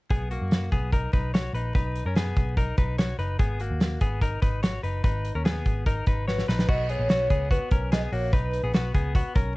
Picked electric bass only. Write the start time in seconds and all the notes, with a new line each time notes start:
0.11 B1
0.41 F#2
0.72 B1
1.13 B1
1.53 A#1
1.75 B1
2.06 F#2
2.37 B1
2.78 B1
3.19 F#1
3.39 G#1
3.70 D#2
4.01 G#1
4.42 G#1
4.83 F#1
5.04 G#1
5.35 D#2
5.66 G#1
6.07 G#1
6.49 A#1
6.69 B1
6.99 A#1
7.10 B1
7.30 C#2
7.72 B1
8.12 A#1
8.33 B1
8.63 A#1
8.95 C#2
9.36 B1